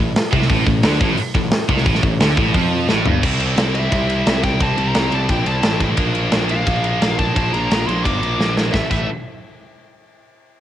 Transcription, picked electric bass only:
0.00 A1
0.33 C2
0.50 A1
0.67 A1
0.84 D2
1.01 A1
1.18 muted picked electric bass stroke
1.35 A1
1.69 C2
1.86 A1
2.03 A1
2.20 D2
2.37 A1
2.54 F2
2.89 A1
3.06 G1
3.23 C2
3.57 C2
3.92 C2
4.27 C2
4.61 C2
4.78 C2
4.95 C2
5.12 C2
5.29 A#1
5.46 C2
5.63 A1
5.98 A#1
6.32 A#1
6.67 A#1
7.02 A#1
7.36 A#1
7.53 A#1
7.70 A#1
7.87 A#1
8.06 G1
8.22 A#1
8.39 A#1
8.74 A1
8.91 A1

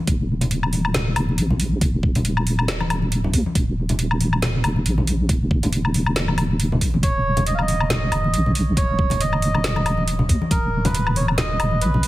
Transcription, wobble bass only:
0.07 D#1
0.94 D#1
1.16 D#1
1.38 A#1
1.81 D#1
2.68 D#1
3.34 D#2
3.55 D#1
4.42 D#1
4.64 D#1
4.86 A#1
5.29 D#1
6.16 D#1
6.81 A#1
6.94 F#1
7.03 D#1
7.90 D#1
8.12 D#1
8.33 A#1
8.77 D#1
9.64 D#1
10.29 D#2
10.51 D#1
11.38 D#1
11.60 D#1
11.81 A#1

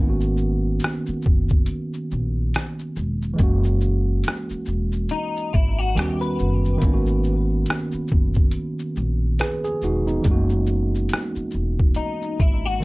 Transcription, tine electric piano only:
Already playing: D#3 A#3
0.00 B3 C#4 E4
0.10 F#4
3.34 E3 G#3
3.38 A#3 C#4
3.43 F#4
5.95 D#3 G3 B3 C#4
6.00 F#4
6.78 D#3 A#3
6.82 B3 C#4
6.88 E4
6.94 F#4
9.40 G#4 B4
9.64 G#4
9.84 D#4 F#4
10.07 B3 D#4
10.22 E3 G#3
10.27 A3 C#4
10.31 A#3 F#4
12.80 D#3 G3

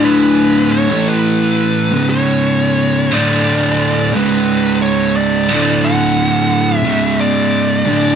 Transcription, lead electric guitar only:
0.05 B4
0.72 C#5
1.09 B4
2.10 C#5
3.14 D5
4.16 B4
4.82 C#5
5.16 D5
5.84 F#5
6.77 E5
7.21 D5

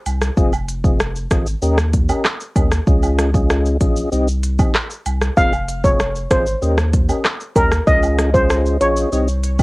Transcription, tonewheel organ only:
0.37 C4 F4 G#4 D#5
0.84 C4 F4 G#4 D#5
1.31 C4 F4 G#4 D#5
1.62 C#4 G4 A#4 D#5
2.09 C#4 G4 A#4 D#5
2.56 C#4 G4 A#4 D#5
2.87 C#4 F4 G#4 D#5
3.34 C#4 F4 G#4 D#5
3.81 C#4 F4 G#4 D#5
4.12 C4 D#4 G4 D#5
4.59 C4 D#4 G4 D#5
5.37 C4 F4 G#4 D#5
5.84 C4 F4 G#4 D#5
6.31 C4 F4 G#4 D#5
6.62 C#4 G4 A#4 D#5
7.09 C#4 G4 A#4 D#5
7.56 C#4 G4 A#4 D#5
7.87 C#4 F4 G#4 D#5
8.34 C#4 F4 G#4 D#5
8.81 C#4 F4 G#4 D#5
9.12 C4 D#4 G4 D#5
9.59 C4 D#4 G4 D#5

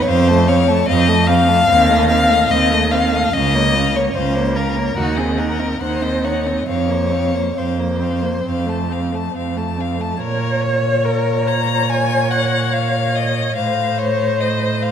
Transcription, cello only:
0.07 F2
0.88 F2
1.68 D#2
2.50 D#2
3.33 C#2
4.15 C#2
4.96 D#2
5.81 D#2
6.68 F2
7.56 F2
8.46 F2
9.34 F2
10.20 A#2
13.57 A2

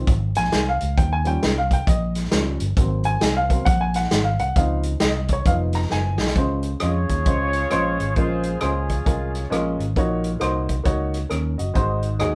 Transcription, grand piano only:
0.37 G#5
0.69 F5
0.98 G5
1.13 G#5
1.24 F3 G3 C#4 G5
1.58 F5
1.73 G5
1.89 D#5
2.32 F3 G3 C#4
2.78 F#3 A#3 C4
3.05 G#5
3.37 F5
3.50 F#3 A#3 C4
3.65 F#5
3.81 G#5
3.96 F#5
4.24 F5
4.40 F#5
4.56 F3 C4 D#4 F5
5.01 D#5
5.33 C#5
5.46 F3 B3 D#4 F5
5.75 A#5
5.92 G#5
6.36 C#3 G#3 C#4 F4 C5
6.81 G#3 C#4 F4 D#5
7.25 G#3 C#4 F4 C5
7.70 G#3 C#4 F4 C5
8.16 A#2 G#3 C#4 F4 A#4
8.61 G#3 C#4 F4 C5
9.05 G#3 C#4 F4 A#4
9.50 G#3 C#4 F4 A#4
9.97 A#2 A#3 D#4 F#4 C#5
10.40 A#3 D#4 F#4 C5
10.84 A#3 D#4 F#4 C#5
11.29 C#4 A#4
11.58 F#4 D#5
11.74 G#2 G#3 D#4 F#4 C5
12.19 G#3 D#4 F#4 G#4

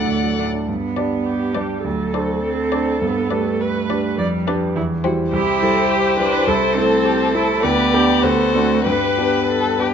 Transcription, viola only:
Already playing: A4
1.26 G4
1.85 A4
3.61 B4
4.18 D5
4.47 D4
4.76 E4
5.04 F#4
5.32 G4
5.62 A4
5.90 G4
6.18 B4
6.48 A4
7.05 G4
7.34 A4
7.64 B4
7.94 G4
8.24 A4
8.86 B4

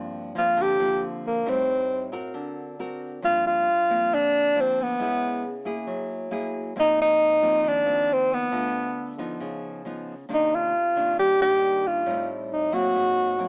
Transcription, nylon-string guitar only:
Already playing: G2 F3 A#3 C4
0.35 F3 A#3 C4
0.57 D3
0.79 F3 A#3 C4
1.46 A2 G3 C4 D#4
2.12 C4 F#4 A#4
2.34 D3
2.79 C4 F#4 A#4
3.22 G2 F3 A#3 C4
3.90 F3 A#3 C4
4.12 D3
4.55 F3 A#3 C4
4.99 C#3 G#3 B3 E4
5.65 A#3 E4 G#4
5.87 F#3
6.31 A#3 E4 G#4
6.76 G#2 F3 A#3 C4
7.42 F3 A#3 C4
7.64 D#3
7.85 F3 A#3 C4
8.52 D3 A3 F4
9.19 F3 B3 D#4
9.41 C#3
9.85 F3 B3 D#4
10.29 C3 D#3 A#3 D4
10.96 D#3 A#3 D4
11.19 G2
11.41 D#3 A#3 D4
12.06 A2 G3 C4 D#4
12.72 F#3 A#3 C4
12.96 G#2
13.39 F#3 A#3 C4

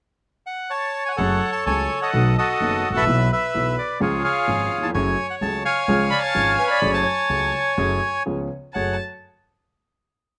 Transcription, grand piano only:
1.18 F#2 F#3 A3 C#4 G#4
1.67 C#2 C#3 F#3 A3 C#4 G#4
2.13 B1 B2 D#3 A3 B3 F#4
2.61 F#1 F#2 D#3 A3 B3 F#4
2.90 G#1
2.95 A1
3.00 A#1
3.06 B1 B2 E3 F#3 B3 F#4
3.54 B1 B2 E3 F#3 B3 F#4
4.00 C#2 C#3 F3 G#3 C#4 G#4
4.48 G#1 G#2 F3 G#3 C#4 G#4
4.78 D#2
4.84 E2
4.90 F2
4.95 F#2 F#3 A3 C#4 G#4
5.41 C#2 C#3 F#3 A3 C#4 G#4
5.88 C#2 C#3 F3 G#3 C#4 G#4
6.35 G#1 G#2 F3 G#3 C#4 G#4
6.81 F#2 F#3 A3 C#4 G#4
7.29 C#2 C#3 F#3 A3 C#4 G#4
7.78 F#2 F#3 A3 C#4 G#4
8.26 C#2 C#3 F3 B3 C#4 G#4
8.75 F#2 A3 F#4 G#4

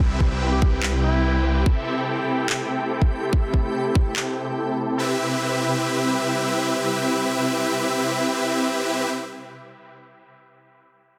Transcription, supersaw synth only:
0.00 C4 E4 G4 B4 E5
0.31 C4 E4 G4 B4 G5
1.66 C4 E4 G4 A4 E5
1.97 C4 E4 G4 A4 G5
3.33 C4 E4 G4 A4 E5
3.64 C4 E4 G4 A4 G5
4.58 C4 E4 G4 A4 G5
4.68 C4 E4 G4 A4 A5
5.00 C4 E4 G4 B4 E5

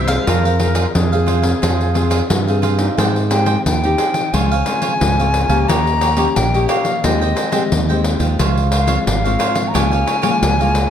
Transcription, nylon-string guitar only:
Already playing: G2
0.08 C4 F4 G#4
0.27 F3
0.60 C4 F4 G#4
0.95 C3
1.13 C4 F4 G#4
1.43 C4 F4 G#4
1.63 F3
1.96 C4 F4 G#4
2.31 C3
2.49 C4 F4 G#4
2.79 C4 D#4 G4
2.98 G#3
3.31 C4 D#4 G4
3.66 D#3
3.84 C4 D#4 G4
4.34 C#3 G#3 C4 F4
4.66 G#3 C4 F4
5.02 G#2
5.19 G#3 C4 F4
5.49 A#3 C#4 G4
5.69 D#3
6.17 A#3 C#4 G4
6.37 A#2
6.54 A#3 C#4 G4
7.04 D#3 G#3 C4 G4
7.52 G#3 C4 G4
7.72 D#3
7.90 G#3 C4 G4
8.20 G#3 F4
8.40 C#3
8.88 G#3 C4 F4
9.08 G#2
9.26 G#3 C4 F4
9.75 C#3 G#3 A#3 F4
10.23 G#3 A#3 F4
10.43 C#3
10.61 G#3 A#3 F4

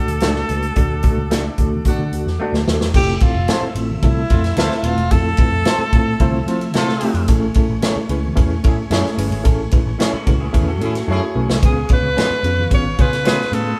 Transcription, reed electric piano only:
Already playing: A3 D4 F#4 A4
0.22 A3 D4 F#4 A4
0.49 A3 D4 F#4 B4
0.76 A3 D4 F#4 A4
1.03 A3 D4 F#4 A4
1.31 A3 D4 F#4 A4
1.59 A3 D4 F#4 A4
1.85 A3 D4 F#4 A4
2.13 A3 D4 F#4 A4
2.41 A3 D4 F#4 A4
2.68 A3 D4 F#4 A4
2.95 A3 C4 E4 F4 A4
3.22 A3 C4 E4 F4 A4
3.50 A3 C4 E4 F4 A4
3.76 A3 C4 E4 F4 A4
4.03 A3 C4 E4 F4 A4
4.31 A3 C4 E4 F4 A4
4.58 A3 C4 E4 F4 B4
4.85 A3 C4 E4 F4 B4
5.11 A3 C4 E4 F4 A4
5.39 A3 C4 E4 F4 B4
5.67 A3 C4 E4 F4 A4
5.93 A3 C4 E4 F4 A4
6.20 A3 C4 E4 F4 C5
6.47 A3 C4 E4 F4 C5
6.75 A3 C4 E4 F4 A4
7.02 A3 C4 E4 F4 G4
7.28 A3 C#4 E4 G#4 A4
7.55 A3 C#4 E4 G#4 A4
7.82 A3 C#4 E4 G#4 A4
8.09 A3 C#4 E4 G#4 B4
8.36 A3 C#4 E4 G#4 B4
8.63 A3 C#4 E4 G#4 A4
8.90 A3 C#4 E4 G#4 A4
9.17 A3 C#4 E4 G#4 B4
9.44 A3 C#4 E4 G#4 A4
9.71 A3 C#4 E4 G#4 B4
9.98 A3 C#4 E4 G#4 A4
10.26 A3 C#4 E4 G#4 B4
10.53 A3 C#4 E4 G#4 B4
10.80 A3 C#4 E4 G#4 A4
11.07 A3 C#4 E4 G#4 A4
11.35 A3 C#4 E4 G#4 B4
11.63 B3 C#4 F4 G#4 B4
11.90 B3 C#4 F4 G#4 C#5
12.16 B3 C#4 F4 G#4 B4
12.43 B3 C#4 F4 G#4 B4
12.70 B3 C#4 F4 G#4 B4
12.98 B3 C#4 F4 G#4 B4
13.25 B3 C#4 F4 G#4
13.52 B3 C#4 F4 G#4 B4

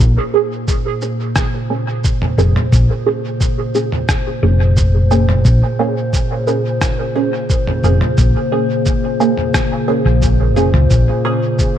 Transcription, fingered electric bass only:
0.00 A#1
2.38 F1
2.72 A#1
4.43 F1
5.45 A#1
7.83 F1
8.18 A#1
10.05 A#1
10.56 F1
10.74 C#2
10.91 A#1

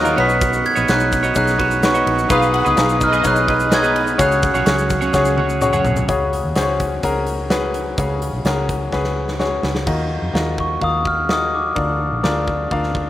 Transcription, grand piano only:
Already playing: D#3 F#3 D#4 F4 F#4 A#4 C#5
0.18 B2 C#4 D#4 F#4 B4
0.89 C#4 D#4 F#4 C#5
1.36 C#4 D#4 F#4 G#4
1.83 C#4 D#4 F#4 B4
2.30 B2 B3 D#4 G#4 B4
2.77 B3 D#4 G#4 A#5
3.24 B3 D#4 G#4 C#5
3.71 B3 D#4 G#4 C#5
4.18 C#3 C#4 F#4 G#4 C#5
4.66 C#4 F#4 G#4 C#5
5.13 C#4 F#4 G#4 C#5
5.61 C#4 F#4 G#4 C#5
6.08 C#3 C#4 F#4 G#4 C#5
6.56 C#4 F#4 G#4 C5
6.62 C#5
7.04 C#4 F#4 G#4 A#4
7.50 C#4 F#4 G#4 B4
7.98 C#3 C#4 F#4 G#4 C#5
8.45 C#4 F#4 G#4 A#4
8.92 C#4 F#4 G#4 B4
9.39 C#4 F#4 G#4 C#5
9.86 D#3 F4 F#4 A#4 D#5
10.33 F4 F#4 A#4 D#5
10.81 F4 F#4 A#4 F5
11.29 F4 F#4 A#4 D#5
11.75 D3 D4 F4 A#4 D5
12.23 D4 F4 A#4 D5
12.72 D4 F4 A#4 F5

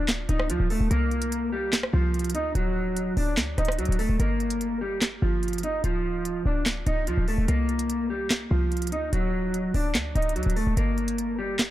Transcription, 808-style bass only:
Already playing: D1
0.29 D1
0.50 D2
0.60 D1
0.80 D1
0.91 C2
1.94 C2
2.35 D2
2.55 D1
3.17 D1
3.37 D2
3.58 D1
3.79 D2
3.89 D1
4.09 D1
4.20 G1
5.22 G1
5.84 D1
6.46 D1
6.87 D1
7.07 D2
7.18 D1
7.38 D1
7.48 C2
8.51 C2
8.92 D2
9.13 D1
9.74 D1
9.95 D2
10.15 D1
10.36 D2
10.46 D1
10.67 D1
10.77 G1

